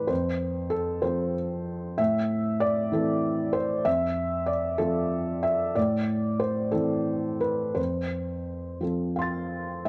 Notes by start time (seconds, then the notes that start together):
Already playing: A2 E3 C4 A4 B4 C5 D5
0.07 F2 C5
0.70 A4
1.02 F3 C4 A4 C5
1.98 A2 E5
2.60 D5
2.92 E3 C4 A4
3.53 C5
3.85 F2 E5
4.46 D5
4.78 F3 C4 A4
5.43 E5
5.76 A2 D5
6.40 C5
6.72 E3 C4 A4
7.40 B4
7.74 F2 C5
8.80 F3 C4 A4
9.16 F5 C6
9.22 A6
9.85 E5